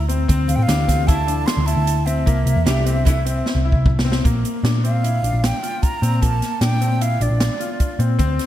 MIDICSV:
0, 0, Header, 1, 6, 480
1, 0, Start_track
1, 0, Tempo, 394997
1, 354, Time_signature, 5, 2, 24, 8
1, 10282, End_track
2, 0, Start_track
2, 0, Title_t, "Flute"
2, 0, Program_c, 0, 73
2, 585, Note_on_c, 0, 77, 89
2, 678, Note_on_c, 0, 79, 77
2, 696, Note_off_c, 0, 77, 0
2, 761, Note_on_c, 0, 77, 92
2, 779, Note_off_c, 0, 79, 0
2, 1305, Note_on_c, 0, 81, 96
2, 1323, Note_off_c, 0, 77, 0
2, 1778, Note_on_c, 0, 84, 88
2, 1796, Note_off_c, 0, 81, 0
2, 2021, Note_on_c, 0, 81, 89
2, 2039, Note_off_c, 0, 84, 0
2, 2504, Note_on_c, 0, 76, 82
2, 2522, Note_off_c, 0, 81, 0
2, 4671, Note_off_c, 0, 76, 0
2, 5896, Note_on_c, 0, 77, 81
2, 6623, Note_on_c, 0, 79, 81
2, 6642, Note_off_c, 0, 77, 0
2, 7079, Note_on_c, 0, 82, 92
2, 7098, Note_off_c, 0, 79, 0
2, 7557, Note_on_c, 0, 81, 91
2, 7575, Note_off_c, 0, 82, 0
2, 8046, Note_on_c, 0, 79, 89
2, 8064, Note_off_c, 0, 81, 0
2, 8534, Note_on_c, 0, 77, 84
2, 8552, Note_off_c, 0, 79, 0
2, 8777, Note_on_c, 0, 74, 72
2, 8795, Note_off_c, 0, 77, 0
2, 9724, Note_off_c, 0, 74, 0
2, 10282, End_track
3, 0, Start_track
3, 0, Title_t, "Grand piano"
3, 0, Program_c, 1, 0
3, 103, Note_on_c, 1, 60, 75
3, 296, Note_off_c, 1, 60, 0
3, 344, Note_on_c, 1, 60, 86
3, 727, Note_off_c, 1, 60, 0
3, 828, Note_on_c, 1, 62, 77
3, 1020, Note_off_c, 1, 62, 0
3, 1062, Note_on_c, 1, 60, 59
3, 1257, Note_off_c, 1, 60, 0
3, 1303, Note_on_c, 1, 64, 75
3, 1497, Note_off_c, 1, 64, 0
3, 1546, Note_on_c, 1, 62, 70
3, 1928, Note_off_c, 1, 62, 0
3, 2027, Note_on_c, 1, 64, 78
3, 2409, Note_off_c, 1, 64, 0
3, 2509, Note_on_c, 1, 60, 73
3, 2702, Note_off_c, 1, 60, 0
3, 2748, Note_on_c, 1, 58, 82
3, 3130, Note_off_c, 1, 58, 0
3, 3228, Note_on_c, 1, 62, 66
3, 3421, Note_off_c, 1, 62, 0
3, 3468, Note_on_c, 1, 60, 69
3, 3661, Note_off_c, 1, 60, 0
3, 3716, Note_on_c, 1, 64, 77
3, 3906, Note_off_c, 1, 64, 0
3, 3954, Note_on_c, 1, 60, 70
3, 4333, Note_off_c, 1, 60, 0
3, 4432, Note_on_c, 1, 64, 70
3, 4812, Note_off_c, 1, 64, 0
3, 4915, Note_on_c, 1, 60, 74
3, 5105, Note_off_c, 1, 60, 0
3, 5155, Note_on_c, 1, 58, 71
3, 5533, Note_off_c, 1, 58, 0
3, 5636, Note_on_c, 1, 62, 71
3, 5826, Note_off_c, 1, 62, 0
3, 5879, Note_on_c, 1, 60, 66
3, 6067, Note_off_c, 1, 60, 0
3, 6118, Note_on_c, 1, 64, 68
3, 6306, Note_off_c, 1, 64, 0
3, 6353, Note_on_c, 1, 62, 59
3, 6731, Note_off_c, 1, 62, 0
3, 6839, Note_on_c, 1, 65, 63
3, 7215, Note_off_c, 1, 65, 0
3, 7322, Note_on_c, 1, 60, 72
3, 7508, Note_off_c, 1, 60, 0
3, 7556, Note_on_c, 1, 58, 70
3, 7933, Note_off_c, 1, 58, 0
3, 8040, Note_on_c, 1, 62, 70
3, 8226, Note_off_c, 1, 62, 0
3, 8276, Note_on_c, 1, 60, 62
3, 8464, Note_off_c, 1, 60, 0
3, 8516, Note_on_c, 1, 64, 74
3, 8704, Note_off_c, 1, 64, 0
3, 8760, Note_on_c, 1, 62, 68
3, 9134, Note_off_c, 1, 62, 0
3, 9233, Note_on_c, 1, 65, 66
3, 9609, Note_off_c, 1, 65, 0
3, 9713, Note_on_c, 1, 60, 70
3, 9901, Note_off_c, 1, 60, 0
3, 9948, Note_on_c, 1, 60, 90
3, 10282, Note_off_c, 1, 60, 0
3, 10282, End_track
4, 0, Start_track
4, 0, Title_t, "Hollow-body jazz guitar"
4, 0, Program_c, 2, 26
4, 831, Note_on_c, 2, 52, 59
4, 836, Note_on_c, 2, 57, 55
4, 840, Note_on_c, 2, 62, 52
4, 849, Note_on_c, 2, 67, 53
4, 1296, Note_off_c, 2, 52, 0
4, 1303, Note_off_c, 2, 57, 0
4, 1304, Note_off_c, 2, 62, 0
4, 1310, Note_on_c, 2, 52, 61
4, 1313, Note_on_c, 2, 57, 52
4, 1323, Note_on_c, 2, 62, 48
4, 1324, Note_on_c, 2, 64, 73
4, 1513, Note_off_c, 2, 67, 0
4, 1987, Note_off_c, 2, 52, 0
4, 1990, Note_off_c, 2, 57, 0
4, 1991, Note_off_c, 2, 62, 0
4, 1994, Note_off_c, 2, 64, 0
4, 3230, Note_on_c, 2, 52, 65
4, 3239, Note_on_c, 2, 62, 66
4, 3242, Note_on_c, 2, 57, 59
4, 3250, Note_on_c, 2, 67, 75
4, 3573, Note_off_c, 2, 52, 0
4, 3575, Note_off_c, 2, 57, 0
4, 3577, Note_off_c, 2, 62, 0
4, 3578, Note_off_c, 2, 67, 0
4, 3707, Note_on_c, 2, 52, 81
4, 3716, Note_on_c, 2, 57, 56
4, 3717, Note_on_c, 2, 62, 61
4, 3723, Note_on_c, 2, 64, 82
4, 3882, Note_off_c, 2, 52, 0
4, 3884, Note_off_c, 2, 57, 0
4, 3886, Note_off_c, 2, 62, 0
4, 3889, Note_off_c, 2, 64, 0
4, 10282, End_track
5, 0, Start_track
5, 0, Title_t, "Picked electric bass"
5, 0, Program_c, 3, 34
5, 0, Note_on_c, 3, 38, 85
5, 307, Note_off_c, 3, 38, 0
5, 354, Note_on_c, 3, 38, 87
5, 578, Note_off_c, 3, 38, 0
5, 587, Note_on_c, 3, 38, 82
5, 702, Note_off_c, 3, 38, 0
5, 708, Note_on_c, 3, 45, 81
5, 820, Note_off_c, 3, 45, 0
5, 827, Note_on_c, 3, 38, 98
5, 1745, Note_off_c, 3, 38, 0
5, 1909, Note_on_c, 3, 38, 88
5, 2137, Note_off_c, 3, 38, 0
5, 2145, Note_on_c, 3, 38, 84
5, 2710, Note_off_c, 3, 38, 0
5, 2754, Note_on_c, 3, 36, 89
5, 2980, Note_off_c, 3, 36, 0
5, 2985, Note_on_c, 3, 36, 79
5, 3098, Note_off_c, 3, 36, 0
5, 3106, Note_on_c, 3, 40, 84
5, 3221, Note_off_c, 3, 40, 0
5, 3228, Note_on_c, 3, 36, 89
5, 4145, Note_off_c, 3, 36, 0
5, 4314, Note_on_c, 3, 36, 87
5, 4539, Note_off_c, 3, 36, 0
5, 4559, Note_on_c, 3, 36, 80
5, 5117, Note_off_c, 3, 36, 0
5, 5163, Note_on_c, 3, 34, 71
5, 5384, Note_off_c, 3, 34, 0
5, 5631, Note_on_c, 3, 46, 86
5, 6305, Note_off_c, 3, 46, 0
5, 6351, Note_on_c, 3, 34, 66
5, 6465, Note_off_c, 3, 34, 0
5, 6476, Note_on_c, 3, 34, 73
5, 6700, Note_off_c, 3, 34, 0
5, 7316, Note_on_c, 3, 46, 74
5, 7539, Note_off_c, 3, 46, 0
5, 7563, Note_on_c, 3, 34, 85
5, 7783, Note_off_c, 3, 34, 0
5, 8032, Note_on_c, 3, 46, 79
5, 8704, Note_off_c, 3, 46, 0
5, 8754, Note_on_c, 3, 34, 76
5, 8861, Note_off_c, 3, 34, 0
5, 8869, Note_on_c, 3, 34, 81
5, 9094, Note_off_c, 3, 34, 0
5, 9708, Note_on_c, 3, 46, 81
5, 9933, Note_off_c, 3, 46, 0
5, 9956, Note_on_c, 3, 38, 88
5, 10177, Note_off_c, 3, 38, 0
5, 10282, End_track
6, 0, Start_track
6, 0, Title_t, "Drums"
6, 114, Note_on_c, 9, 42, 58
6, 235, Note_off_c, 9, 42, 0
6, 355, Note_on_c, 9, 36, 99
6, 357, Note_on_c, 9, 42, 75
6, 476, Note_off_c, 9, 36, 0
6, 478, Note_off_c, 9, 42, 0
6, 594, Note_on_c, 9, 42, 59
6, 715, Note_off_c, 9, 42, 0
6, 834, Note_on_c, 9, 38, 90
6, 834, Note_on_c, 9, 42, 82
6, 956, Note_off_c, 9, 38, 0
6, 956, Note_off_c, 9, 42, 0
6, 1077, Note_on_c, 9, 36, 78
6, 1080, Note_on_c, 9, 38, 37
6, 1080, Note_on_c, 9, 42, 68
6, 1199, Note_off_c, 9, 36, 0
6, 1201, Note_off_c, 9, 38, 0
6, 1201, Note_off_c, 9, 42, 0
6, 1318, Note_on_c, 9, 36, 99
6, 1318, Note_on_c, 9, 42, 78
6, 1439, Note_off_c, 9, 36, 0
6, 1439, Note_off_c, 9, 42, 0
6, 1557, Note_on_c, 9, 42, 59
6, 1679, Note_off_c, 9, 42, 0
6, 1793, Note_on_c, 9, 38, 105
6, 1793, Note_on_c, 9, 42, 77
6, 1915, Note_off_c, 9, 38, 0
6, 1915, Note_off_c, 9, 42, 0
6, 2036, Note_on_c, 9, 42, 64
6, 2158, Note_off_c, 9, 42, 0
6, 2275, Note_on_c, 9, 42, 71
6, 2396, Note_off_c, 9, 42, 0
6, 2520, Note_on_c, 9, 42, 62
6, 2641, Note_off_c, 9, 42, 0
6, 2759, Note_on_c, 9, 42, 68
6, 2760, Note_on_c, 9, 36, 90
6, 2881, Note_off_c, 9, 42, 0
6, 2882, Note_off_c, 9, 36, 0
6, 2999, Note_on_c, 9, 42, 57
6, 3120, Note_off_c, 9, 42, 0
6, 3239, Note_on_c, 9, 38, 101
6, 3239, Note_on_c, 9, 42, 82
6, 3361, Note_off_c, 9, 38, 0
6, 3361, Note_off_c, 9, 42, 0
6, 3481, Note_on_c, 9, 42, 68
6, 3602, Note_off_c, 9, 42, 0
6, 3723, Note_on_c, 9, 36, 87
6, 3725, Note_on_c, 9, 42, 86
6, 3845, Note_off_c, 9, 36, 0
6, 3847, Note_off_c, 9, 42, 0
6, 3967, Note_on_c, 9, 42, 67
6, 4089, Note_off_c, 9, 42, 0
6, 4205, Note_on_c, 9, 38, 62
6, 4326, Note_off_c, 9, 38, 0
6, 4525, Note_on_c, 9, 36, 75
6, 4646, Note_off_c, 9, 36, 0
6, 4686, Note_on_c, 9, 36, 87
6, 4687, Note_on_c, 9, 45, 63
6, 4808, Note_off_c, 9, 36, 0
6, 4809, Note_off_c, 9, 45, 0
6, 4848, Note_on_c, 9, 38, 94
6, 4969, Note_off_c, 9, 38, 0
6, 5005, Note_on_c, 9, 38, 88
6, 5127, Note_off_c, 9, 38, 0
6, 5166, Note_on_c, 9, 36, 99
6, 5167, Note_on_c, 9, 42, 69
6, 5287, Note_off_c, 9, 36, 0
6, 5288, Note_off_c, 9, 42, 0
6, 5407, Note_on_c, 9, 42, 52
6, 5528, Note_off_c, 9, 42, 0
6, 5647, Note_on_c, 9, 38, 94
6, 5647, Note_on_c, 9, 42, 60
6, 5769, Note_off_c, 9, 38, 0
6, 5769, Note_off_c, 9, 42, 0
6, 5889, Note_on_c, 9, 42, 55
6, 6010, Note_off_c, 9, 42, 0
6, 6129, Note_on_c, 9, 42, 67
6, 6250, Note_off_c, 9, 42, 0
6, 6369, Note_on_c, 9, 42, 59
6, 6491, Note_off_c, 9, 42, 0
6, 6608, Note_on_c, 9, 38, 103
6, 6608, Note_on_c, 9, 42, 69
6, 6730, Note_off_c, 9, 38, 0
6, 6730, Note_off_c, 9, 42, 0
6, 6848, Note_on_c, 9, 42, 57
6, 6969, Note_off_c, 9, 42, 0
6, 7083, Note_on_c, 9, 42, 65
6, 7086, Note_on_c, 9, 36, 91
6, 7204, Note_off_c, 9, 42, 0
6, 7207, Note_off_c, 9, 36, 0
6, 7329, Note_on_c, 9, 42, 65
6, 7451, Note_off_c, 9, 42, 0
6, 7565, Note_on_c, 9, 36, 82
6, 7565, Note_on_c, 9, 42, 74
6, 7686, Note_off_c, 9, 36, 0
6, 7686, Note_off_c, 9, 42, 0
6, 7804, Note_on_c, 9, 38, 30
6, 7804, Note_on_c, 9, 42, 54
6, 7925, Note_off_c, 9, 38, 0
6, 7925, Note_off_c, 9, 42, 0
6, 8036, Note_on_c, 9, 38, 100
6, 8036, Note_on_c, 9, 42, 70
6, 8157, Note_off_c, 9, 38, 0
6, 8157, Note_off_c, 9, 42, 0
6, 8283, Note_on_c, 9, 42, 61
6, 8405, Note_off_c, 9, 42, 0
6, 8524, Note_on_c, 9, 42, 75
6, 8645, Note_off_c, 9, 42, 0
6, 8763, Note_on_c, 9, 42, 62
6, 8884, Note_off_c, 9, 42, 0
6, 8998, Note_on_c, 9, 38, 103
6, 8998, Note_on_c, 9, 42, 76
6, 9120, Note_off_c, 9, 38, 0
6, 9120, Note_off_c, 9, 42, 0
6, 9242, Note_on_c, 9, 42, 53
6, 9364, Note_off_c, 9, 42, 0
6, 9478, Note_on_c, 9, 42, 67
6, 9480, Note_on_c, 9, 36, 91
6, 9600, Note_off_c, 9, 42, 0
6, 9602, Note_off_c, 9, 36, 0
6, 9717, Note_on_c, 9, 42, 55
6, 9839, Note_off_c, 9, 42, 0
6, 9955, Note_on_c, 9, 42, 67
6, 9958, Note_on_c, 9, 36, 95
6, 10076, Note_off_c, 9, 42, 0
6, 10080, Note_off_c, 9, 36, 0
6, 10198, Note_on_c, 9, 38, 28
6, 10198, Note_on_c, 9, 42, 52
6, 10282, Note_off_c, 9, 38, 0
6, 10282, Note_off_c, 9, 42, 0
6, 10282, End_track
0, 0, End_of_file